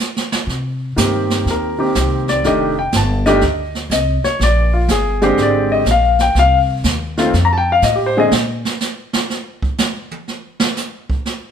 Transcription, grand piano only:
0.96 D#3 A#3 C4 G4
1.51 A#4
1.78 D#3 A#3 C4 G4
2.29 D5
2.45 D#3 A3 D4 G4 D#5
2.79 G5
2.96 A5
3.26 D#3 A3 D4 G4 D#5
3.92 D#5
4.24 C#5
4.43 D5
4.74 F4
4.91 G#4
5.22 D3 G#3 C4 G4 C5
5.43 D5
5.72 D#5
5.91 F5
6.21 G5
6.39 F5
7.18 D#3 A3 C4 F4
7.45 A#5
7.53 A5
7.58 G5
7.72 F5
7.84 D#5
7.95 G4
8.06 C5
8.17 D3 G#3 C4 G#4 D#5

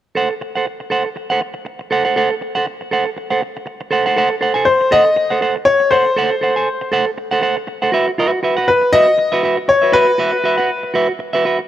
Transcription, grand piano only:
4.65 C5
4.92 D#5
5.65 C#5
5.91 C5
8.68 B4
8.93 D#5
9.69 C#5
9.93 B4

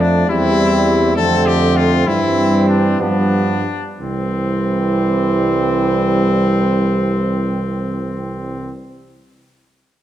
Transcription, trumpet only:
0.00 D4
0.29 E4
1.17 A4
1.46 G4
1.76 F4
2.07 E4
2.68 D4
3.01 D4
4.01 C4

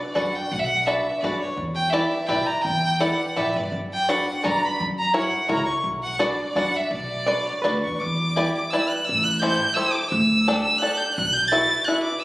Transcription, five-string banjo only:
0.15 D4 F#4 B4 D5
0.87 D4 F#4 B4 D5
1.24 D4 F#4 B4 D5
1.93 E4 G4 B4 D5
2.28 E4 G4 B4 D5
3.00 E4 G4 B4 D5
3.36 E4 G4 B4 D5
4.09 D4 F#4 B4 D5
4.44 D4 F#4 B4 D5
5.14 E4 F#4 A#4 C#5
5.49 E4 F#4 A#4 C#5
6.19 D4 F#4 B4 D5
6.56 D4 F#4 B4 D5
7.27 D4 F#4 B4 D5
7.64 D4 F#4 B4 D5
8.36 E4 G4 B4 D5
8.73 E4 G4 B4 D5
9.42 E4 G4 A4 C5
9.76 E4 G4 A4 C5
10.48 D4 G4 A4 D5
10.82 D4 G4 A4 D5
11.52 E4 F#4 B4 E5
11.88 E4 F#4 B4 E5

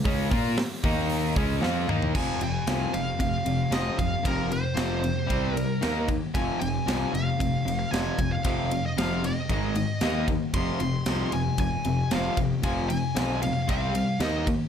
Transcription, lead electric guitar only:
2.16 G#5
2.43 G#5
2.94 F5
3.20 F5
3.73 D#5
3.99 F5
4.27 A#4
4.53 C5
5.55 A#4
6.35 G#5
6.60 G#5
7.14 F5
7.79 F5
7.91 G#5
8.32 F5
8.46 F5
8.86 D#5
8.98 F5
9.26 D#5
10.54 C6
10.80 C6
11.33 G#5
11.60 G#5
12.14 F5
12.64 G#5
12.89 G#5
13.42 F5
13.71 F5
14.22 D#5

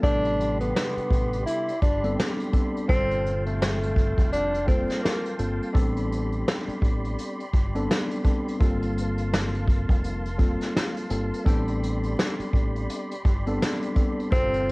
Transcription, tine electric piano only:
0.02 C3 G3 B3 D4 A4
2.03 G3 B3 C4 D4 A4
2.52 G3 B3 C4 D4 A4
2.88 A#2 G3 C4 F4 A4
4.66 G3 A#3 C4 F4 A4
5.38 G3 A#3 C4 F4 A4
5.73 G3 B3 C4 D4 A4
7.75 G3 B3 C4 D4 A4
8.23 G3 B3 C4 D4 A4
8.59 G3 A#3 C4 F4 A4
10.38 G3 A#3 C4 F4 A4
11.09 G3 A#3 C4 F4 A4
11.45 G3 B3 C4 D4 A4
13.46 G3 B3 C4 D4 A4
13.95 G3 B3 C4 D4 A4
14.31 A#2 G3 C4 F4 A4

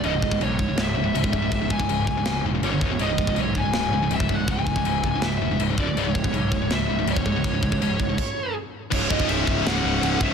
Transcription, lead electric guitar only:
0.05 D#5
0.43 C#5
0.81 E5
1.53 E5
1.71 G#5
2.64 C#5
3.01 D#5
3.41 C#5
3.58 G#5
4.15 E5
4.34 F#5
4.51 G#5
5.08 G#5
5.25 E5
5.80 D5
5.98 D5
6.09 C#5
6.73 E5
7.12 C#5
8.93 C#5
9.11 D#5
9.28 E5
9.66 F#5
10.22 E5

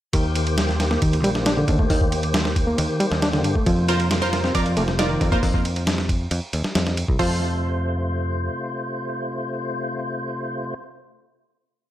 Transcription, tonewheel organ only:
0.14 D#3 A#3 G4 C5
3.66 C3 F4
7.19 C3 A3 F4 C5

